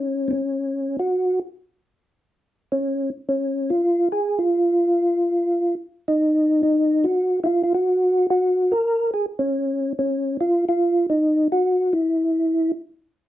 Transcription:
0, 0, Header, 1, 2, 480
1, 0, Start_track
1, 0, Key_signature, -5, "major"
1, 0, Tempo, 418994
1, 1332, Time_signature, 4, 2, 24, 8
1, 15220, End_track
2, 0, Start_track
2, 0, Title_t, "Tonewheel organ"
2, 0, Program_c, 0, 16
2, 0, Note_on_c, 0, 61, 73
2, 320, Note_on_c, 0, 60, 53
2, 330, Note_off_c, 0, 61, 0
2, 352, Note_on_c, 0, 61, 85
2, 374, Note_off_c, 0, 60, 0
2, 1106, Note_off_c, 0, 61, 0
2, 1139, Note_on_c, 0, 66, 87
2, 1597, Note_off_c, 0, 66, 0
2, 3116, Note_on_c, 0, 61, 73
2, 3550, Note_off_c, 0, 61, 0
2, 3765, Note_on_c, 0, 61, 70
2, 4240, Note_on_c, 0, 65, 89
2, 4248, Note_off_c, 0, 61, 0
2, 4679, Note_off_c, 0, 65, 0
2, 4722, Note_on_c, 0, 68, 83
2, 5024, Note_on_c, 0, 65, 72
2, 5031, Note_off_c, 0, 68, 0
2, 6586, Note_off_c, 0, 65, 0
2, 6966, Note_on_c, 0, 63, 74
2, 7581, Note_off_c, 0, 63, 0
2, 7595, Note_on_c, 0, 63, 88
2, 8067, Note_on_c, 0, 66, 92
2, 8086, Note_off_c, 0, 63, 0
2, 8474, Note_off_c, 0, 66, 0
2, 8519, Note_on_c, 0, 64, 58
2, 8541, Note_on_c, 0, 65, 88
2, 8555, Note_off_c, 0, 64, 0
2, 8732, Note_off_c, 0, 65, 0
2, 8746, Note_on_c, 0, 65, 69
2, 8854, Note_off_c, 0, 65, 0
2, 8872, Note_on_c, 0, 66, 92
2, 9471, Note_off_c, 0, 66, 0
2, 9514, Note_on_c, 0, 66, 93
2, 9986, Note_on_c, 0, 70, 101
2, 10005, Note_off_c, 0, 66, 0
2, 10433, Note_off_c, 0, 70, 0
2, 10467, Note_on_c, 0, 68, 87
2, 10606, Note_off_c, 0, 68, 0
2, 10757, Note_on_c, 0, 61, 78
2, 11371, Note_off_c, 0, 61, 0
2, 11442, Note_on_c, 0, 61, 81
2, 11880, Note_off_c, 0, 61, 0
2, 11921, Note_on_c, 0, 65, 92
2, 12200, Note_off_c, 0, 65, 0
2, 12242, Note_on_c, 0, 65, 86
2, 12674, Note_off_c, 0, 65, 0
2, 12713, Note_on_c, 0, 63, 71
2, 13148, Note_off_c, 0, 63, 0
2, 13199, Note_on_c, 0, 66, 88
2, 13667, Note_on_c, 0, 64, 80
2, 13677, Note_off_c, 0, 66, 0
2, 14568, Note_off_c, 0, 64, 0
2, 15220, End_track
0, 0, End_of_file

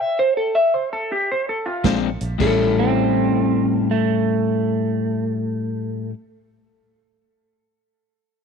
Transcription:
0, 0, Header, 1, 6, 480
1, 0, Start_track
1, 0, Tempo, 556070
1, 156, Time_signature, 4, 2, 24, 8
1, 7285, End_track
2, 0, Start_track
2, 0, Title_t, "Clean electric guitar"
2, 0, Program_c, 0, 27
2, 4, Note_on_c, 0, 76, 82
2, 156, Note_off_c, 0, 76, 0
2, 165, Note_on_c, 0, 72, 89
2, 316, Note_off_c, 0, 72, 0
2, 320, Note_on_c, 0, 69, 85
2, 474, Note_off_c, 0, 69, 0
2, 475, Note_on_c, 0, 76, 91
2, 631, Note_off_c, 0, 76, 0
2, 639, Note_on_c, 0, 72, 79
2, 793, Note_off_c, 0, 72, 0
2, 801, Note_on_c, 0, 69, 91
2, 954, Note_off_c, 0, 69, 0
2, 965, Note_on_c, 0, 67, 76
2, 1116, Note_off_c, 0, 67, 0
2, 1135, Note_on_c, 0, 72, 84
2, 1282, Note_off_c, 0, 72, 0
2, 1287, Note_on_c, 0, 69, 92
2, 1431, Note_on_c, 0, 65, 90
2, 1437, Note_off_c, 0, 69, 0
2, 1690, Note_off_c, 0, 65, 0
2, 2083, Note_on_c, 0, 69, 78
2, 5260, Note_off_c, 0, 69, 0
2, 7285, End_track
3, 0, Start_track
3, 0, Title_t, "Clean electric guitar"
3, 0, Program_c, 1, 27
3, 2411, Note_on_c, 1, 60, 81
3, 3336, Note_off_c, 1, 60, 0
3, 3375, Note_on_c, 1, 57, 82
3, 5266, Note_off_c, 1, 57, 0
3, 7285, End_track
4, 0, Start_track
4, 0, Title_t, "Clean electric guitar"
4, 0, Program_c, 2, 27
4, 1589, Note_on_c, 2, 46, 82
4, 1592, Note_on_c, 2, 56, 82
4, 1596, Note_on_c, 2, 60, 94
4, 1599, Note_on_c, 2, 62, 85
4, 1797, Note_off_c, 2, 46, 0
4, 1798, Note_off_c, 2, 56, 0
4, 1800, Note_off_c, 2, 60, 0
4, 1802, Note_off_c, 2, 62, 0
4, 2059, Note_on_c, 2, 45, 84
4, 2073, Note_on_c, 2, 55, 103
4, 2084, Note_on_c, 2, 61, 95
4, 2094, Note_on_c, 2, 64, 99
4, 5283, Note_off_c, 2, 45, 0
4, 5290, Note_off_c, 2, 55, 0
4, 5296, Note_off_c, 2, 61, 0
4, 5300, Note_off_c, 2, 64, 0
4, 7285, End_track
5, 0, Start_track
5, 0, Title_t, "Fingered electric bass"
5, 0, Program_c, 3, 33
5, 1593, Note_on_c, 3, 34, 84
5, 1879, Note_off_c, 3, 34, 0
5, 1910, Note_on_c, 3, 34, 83
5, 2061, Note_off_c, 3, 34, 0
5, 2076, Note_on_c, 3, 33, 94
5, 5257, Note_off_c, 3, 33, 0
5, 7285, End_track
6, 0, Start_track
6, 0, Title_t, "Drums"
6, 1589, Note_on_c, 9, 42, 90
6, 1592, Note_on_c, 9, 36, 88
6, 1595, Note_on_c, 9, 38, 105
6, 1675, Note_off_c, 9, 42, 0
6, 1678, Note_off_c, 9, 36, 0
6, 1681, Note_off_c, 9, 38, 0
6, 1904, Note_on_c, 9, 42, 59
6, 1990, Note_off_c, 9, 42, 0
6, 2071, Note_on_c, 9, 49, 84
6, 2073, Note_on_c, 9, 36, 93
6, 2158, Note_off_c, 9, 49, 0
6, 2159, Note_off_c, 9, 36, 0
6, 7285, End_track
0, 0, End_of_file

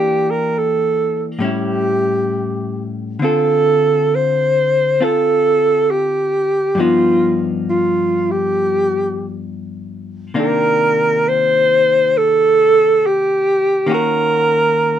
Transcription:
0, 0, Header, 1, 3, 480
1, 0, Start_track
1, 0, Tempo, 895522
1, 1710, Time_signature, 4, 2, 24, 8
1, 3148, Tempo, 886263
1, 8087, End_track
2, 0, Start_track
2, 0, Title_t, "Alto saxophone"
2, 0, Program_c, 0, 65
2, 0, Note_on_c, 0, 67, 73
2, 165, Note_on_c, 0, 70, 62
2, 173, Note_off_c, 0, 67, 0
2, 311, Note_on_c, 0, 69, 68
2, 319, Note_off_c, 0, 70, 0
2, 676, Note_off_c, 0, 69, 0
2, 794, Note_on_c, 0, 67, 71
2, 1558, Note_off_c, 0, 67, 0
2, 1739, Note_on_c, 0, 69, 83
2, 2225, Note_on_c, 0, 72, 81
2, 2233, Note_off_c, 0, 69, 0
2, 2702, Note_on_c, 0, 69, 84
2, 2710, Note_off_c, 0, 72, 0
2, 3168, Note_on_c, 0, 67, 78
2, 3176, Note_off_c, 0, 69, 0
2, 3652, Note_on_c, 0, 65, 81
2, 3660, Note_off_c, 0, 67, 0
2, 4029, Note_off_c, 0, 65, 0
2, 4136, Note_on_c, 0, 65, 73
2, 4468, Note_on_c, 0, 67, 76
2, 4476, Note_off_c, 0, 65, 0
2, 5087, Note_off_c, 0, 67, 0
2, 5599, Note_on_c, 0, 70, 87
2, 6078, Note_on_c, 0, 72, 99
2, 6086, Note_off_c, 0, 70, 0
2, 6561, Note_on_c, 0, 69, 101
2, 6570, Note_off_c, 0, 72, 0
2, 7043, Note_on_c, 0, 67, 78
2, 7051, Note_off_c, 0, 69, 0
2, 7496, Note_off_c, 0, 67, 0
2, 7518, Note_on_c, 0, 70, 85
2, 8087, Note_off_c, 0, 70, 0
2, 8087, End_track
3, 0, Start_track
3, 0, Title_t, "Hollow-body jazz guitar"
3, 0, Program_c, 1, 26
3, 0, Note_on_c, 1, 52, 41
3, 0, Note_on_c, 1, 58, 45
3, 0, Note_on_c, 1, 62, 48
3, 0, Note_on_c, 1, 67, 52
3, 743, Note_on_c, 1, 45, 44
3, 745, Note_off_c, 1, 52, 0
3, 752, Note_on_c, 1, 55, 43
3, 753, Note_off_c, 1, 58, 0
3, 757, Note_off_c, 1, 62, 0
3, 760, Note_off_c, 1, 67, 0
3, 760, Note_on_c, 1, 61, 44
3, 774, Note_on_c, 1, 64, 44
3, 1709, Note_off_c, 1, 45, 0
3, 1712, Note_on_c, 1, 50, 45
3, 1713, Note_off_c, 1, 55, 0
3, 1717, Note_off_c, 1, 61, 0
3, 1724, Note_off_c, 1, 64, 0
3, 1727, Note_on_c, 1, 60, 47
3, 1732, Note_on_c, 1, 65, 46
3, 1740, Note_on_c, 1, 69, 47
3, 2676, Note_off_c, 1, 60, 0
3, 2682, Note_off_c, 1, 65, 0
3, 2683, Note_on_c, 1, 60, 31
3, 2685, Note_off_c, 1, 69, 0
3, 2688, Note_on_c, 1, 65, 37
3, 2692, Note_on_c, 1, 69, 37
3, 3623, Note_on_c, 1, 43, 43
3, 3630, Note_off_c, 1, 50, 0
3, 3635, Note_off_c, 1, 60, 0
3, 3637, Note_on_c, 1, 53, 45
3, 3638, Note_off_c, 1, 65, 0
3, 3640, Note_off_c, 1, 69, 0
3, 3648, Note_on_c, 1, 59, 46
3, 3651, Note_on_c, 1, 63, 47
3, 5549, Note_off_c, 1, 43, 0
3, 5556, Note_off_c, 1, 53, 0
3, 5561, Note_off_c, 1, 59, 0
3, 5563, Note_off_c, 1, 63, 0
3, 5569, Note_on_c, 1, 48, 40
3, 5573, Note_on_c, 1, 58, 44
3, 5577, Note_on_c, 1, 51, 41
3, 5579, Note_on_c, 1, 62, 47
3, 7470, Note_off_c, 1, 51, 0
3, 7476, Note_off_c, 1, 58, 0
3, 7477, Note_off_c, 1, 48, 0
3, 7477, Note_on_c, 1, 51, 44
3, 7482, Note_on_c, 1, 58, 44
3, 7483, Note_off_c, 1, 62, 0
3, 7493, Note_on_c, 1, 61, 46
3, 7502, Note_on_c, 1, 66, 52
3, 8087, Note_off_c, 1, 51, 0
3, 8087, Note_off_c, 1, 58, 0
3, 8087, Note_off_c, 1, 61, 0
3, 8087, Note_off_c, 1, 66, 0
3, 8087, End_track
0, 0, End_of_file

